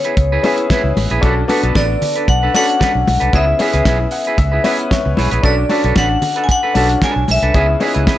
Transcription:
Already playing: B3 C#4 E4 G#4 C#5
0.04 E4 G#4 B4, closed hi-hat
0.17 C#2, muted clean electric guitar stroke, kick, closed hi-hat
0.32 E4 G#4 B4
0.43 B3 C#4 E4 G#4 B4 E5, open hi-hat, muted conga
0.58 muted clean electric guitar stroke, closed hi-hat
0.70 E4 G#4 B4, kick, snare, closed hi-hat, high conga
0.84 C#2, muted clean electric guitar stroke
0.97 A1, muted clean electric guitar stroke, open hi-hat, high conga
1.10 A#1 E4 G#4 B4, closed hi-hat
1.21 B1 C#4 D4 F#4 A4, kick, closed hi-hat, muted conga
1.25 B4
1.37 muted clean electric guitar stroke
1.48 B3 D4 F#4 A4 B4, open hi-hat, muted conga
1.63 B1 D4 A4 B4, closed hi-hat
1.75 A1 D4 A4 B4 D5, kick, snare, closed hi-hat, high conga
1.88 muted clean electric guitar stroke
2.02 muted clean electric guitar stroke, open hi-hat, low conga
2.15 D4 A4 B4, closed hi-hat
2.28 B1 F#5, muted clean electric guitar stroke, kick, closed hi-hat
2.43 D4 A4 B4
2.54 C#4 D4 F#4 A4 B4 F#5, open hi-hat, muted conga
2.68 muted clean electric guitar stroke, closed hi-hat
2.79 D4 A4 B4, kick, snare, closed hi-hat, high conga
2.95 B1, muted clean electric guitar stroke
3.07 B1, muted clean electric guitar stroke, open hi-hat, high conga
3.20 C2 D4 A4 B4, closed hi-hat
3.33 C#2 B3 C#4 E4 G#4 B4 E5, kick, closed hi-hat, muted conga
3.47 muted clean electric guitar stroke
3.59 B3 C#4 E4 G#4 B4, open hi-hat, muted conga
3.73 C#2 E4 G#4 B4, closed hi-hat
3.85 B1 E4 G#4 B4, kick, snare, closed hi-hat, high conga
4.00 muted clean electric guitar stroke
4.11 F#5, muted clean electric guitar stroke, open hi-hat
4.25 G#4 B4, closed hi-hat
4.29 E4
4.38 C#2 E5, muted clean electric guitar stroke, kick, closed hi-hat
4.52 E4 G#4 B4
4.64 B3 C#4 E4 G#4 B4, open hi-hat, muted conga
4.79 muted clean electric guitar stroke, closed hi-hat
4.91 C#5, muted clean electric guitar stroke, kick, snare, closed hi-hat, high conga
5.05 C#2, muted clean electric guitar stroke
5.17 B1 E4 G#4 B4 C#5, open hi-hat, high conga
5.31 A#1 E4 G#4 B4, closed hi-hat
5.43 B1 C#4 D4 F#4 A4 B4 D5, kick, closed hi-hat
5.58 muted clean electric guitar stroke
5.69 C#4 D4 F#4 A4 B4, open hi-hat, muted conga
5.84 B1 D4 A4 B4, closed hi-hat
5.95 A1 D4 A4 B4 F#5, kick, snare, closed hi-hat, high conga
6.11 muted clean electric guitar stroke
6.22 muted clean electric guitar stroke, open hi-hat, low conga
6.36 D4 A4 B4, closed hi-hat
6.44 G#5
6.49 F#5, muted clean electric guitar stroke, kick, closed hi-hat
6.63 D4 A4 B4
6.74 B1 C#4 D4 F#4 A4 B4, open hi-hat, muted conga
6.89 muted clean electric guitar stroke, closed hi-hat
7.02 D4 A4 B4 G#5, kick, snare, closed hi-hat, high conga
7.16 B1, muted clean electric guitar stroke
7.28 B1 E5, muted clean electric guitar stroke, open hi-hat, high conga
7.42 C2 D4 A4 B4, closed hi-hat
7.54 C#2 B3 C#4 E4 G#4 B4, kick, closed hi-hat
7.69 muted clean electric guitar stroke
7.80 B3 C#4 D#4 E4 G#4 B4, open hi-hat, muted conga
7.87 E4
7.94 C#2 E4 G#4 B4, closed hi-hat
8.07 E4 G#4 B4, kick, snare, closed hi-hat, high conga

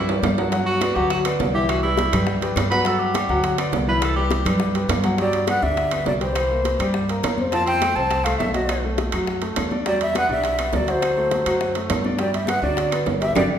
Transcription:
Already playing: G2
0.08 G3 G4 B4, high bongo, high conga, low timbale
0.22 G2, high bongo, low bongo, high conga, low timbale, claves
0.38 F#3 F#4 F#5, low timbale
0.52 F#3 F#4 F#5, high bongo, high conga, high timbale
0.66 F#4, high bongo, high conga
0.81 B3 B4 D5, high bongo, high conga, high timbale, low timbale, claves
0.95 D2 F#3 F#4 G4 F#5, high bongo, high conga
1.10 F#4, high bongo, high conga, high timbale
1.25 B3 B4 D5, high bongo, high conga, high timbale, claves
1.40 C2, high bongo, low bongo, high conga, low timbale
1.54 E3 E4 G4 E5, high conga
1.69 F#4, high bongo, high timbale, claves
1.83 G3 E4 G4 B4, high bongo, high conga
1.97 high bongo, high conga, high timbale, low timbale
2.12 G2 G3 G4 B4, high bongo, high conga, low conga, high timbale, claves
2.27 high bongo, high conga
2.41 G3 G4 B4, high bongo, high conga, high timbale
2.56 G2, high bongo, low bongo, high conga, high timbale, low timbale, claves
2.70 F#3 F#4 B4 F#5, high conga, high timbale
2.85 F#3 F#4 A4 F#5, high bongo, high conga, high timbale
2.99 G4, high bongo, high conga
3.15 B3 B4 D5, high bongo, high conga, high timbale, low timbale, claves
3.29 D2 F#3 F#4 F#5, high bongo, high conga
3.44 high bongo, high conga, high timbale
3.58 B3 B4 D5, high bongo, high conga, high timbale, claves
3.72 C2, high bongo, low bongo, high conga, low timbale
3.87 E3 E4 B4 E5, high conga
4.02 A4, high bongo, high conga, high timbale, claves
4.16 G3 G4 B4, high bongo, high conga
4.31 high bongo, high conga, high timbale, low timbale
4.45 G2 G3 G4 B4, high bongo, high conga, low conga, high timbale, claves
4.60 high bongo, high conga
4.75 G3 G4 B4, high bongo, high conga, high timbale
4.89 G2, high bongo, low bongo, high conga, high timbale, low timbale, claves
5.04 F#3 F#4 F#5, high conga, high timbale
5.18 F#3 G3 G4 D5, high bongo, high conga, high timbale
5.33 high conga, high timbale
5.47 B3 B4 F#5, high bongo, high conga, high timbale, low timbale, claves
5.62 D2 G3 D4 D5 E5, high bongo
5.77 high bongo, high conga, high timbale
5.91 B3 B4, high bongo, high conga, high timbale, claves
6.06 C2 F#3 D5, high bongo, low bongo, high conga, low timbale
6.21 E3 G4 C5 G5, high bongo, high timbale
6.35 high bongo, high conga, high timbale, claves
6.50 A#3 A#4, high conga
6.65 high bongo, high conga, high timbale, low timbale
6.79 G2 G3 G4, high bongo, high conga, high timbale, claves
6.94 high bongo, high conga
7.09 A#3 A#4, high bongo, high conga, high timbale
7.23 F2, high bongo, low bongo, high conga, high timbale, low timbale, claves
7.38 C4 C5, high bongo, high conga
7.52 F3 C4 F4 A5, high bongo, high conga, high timbale
7.66 C4 G5, high conga, high timbale
7.82 A3 A4, high bongo, high conga, high timbale, low timbale, claves
7.95 C2 C4 C5 A5, high bongo
8.11 high bongo, high conga, high timbale
8.24 A3 A4 F5, high bongo, high conga, high timbale, claves
8.38 B1 A3 E5, high bongo, low bongo, high conga, low timbale
8.53 F#3 F#4 D#5 F#5, high bongo, high conga, high timbale
8.69 high bongo, high conga, high timbale, claves
8.84 A3 A4, high conga
8.98 high bongo, high conga, high timbale, low timbale
9.12 F#2 F#3 F#4, high bongo, high conga, high timbale, claves
9.27 high bongo, high conga
9.42 A3 A4, high bongo, high conga, high timbale
9.56 E2, high bongo, low bongo, high conga, high timbale, low timbale, claves
9.71 D4 D5, high bongo, high conga
9.86 F#3 G3 G4 D5, high bongo, high conga, high timbale
10.01 G3 E5, high conga, high timbale
10.15 B3 B4 F#5, high bongo, high conga, high timbale, low timbale, claves
10.29 B1 G3 D4 D5 E5, high bongo
10.44 high bongo, high conga, high timbale
10.59 B3 B4, high bongo, high conga, high timbale, claves
10.73 D2 F#3 D5, high bongo, low bongo, high conga, low timbale
10.87 F#3 F#4 C5 F#5, high bongo, high timbale
11.02 high bongo, high conga, high timbale, claves
11.17 A3 A4, high conga
11.31 high bongo, high conga, high timbale, low timbale
11.46 F#2 F#3 F#4, high bongo, high conga, high timbale, claves
11.61 high bongo, high conga
11.75 A3 A4, high bongo, high conga, high timbale
11.90 G2, high bongo, low bongo, high conga, high timbale, low timbale, claves
12.04 D4 D5, high bongo, high conga
12.19 F#3 G3 G4 D5, high bongo, high conga, high timbale
12.33 G3 E5, high conga, high timbale
12.46 B3 B4 F#5, high bongo, high conga, high timbale, low timbale, claves
12.62 D2 F#3 D4 D5, high bongo
12.77 high bongo, high conga, high timbale
12.92 B3 B4, high bongo, high conga, high timbale, claves
13.06 G1, high bongo, low bongo, high conga, low timbale
13.20 G3 G4 E5 G5, high bongo, high timbale
13.35 G1 G3 D4 F#4 G4 D5, low bongo, low conga, high timbale, claves

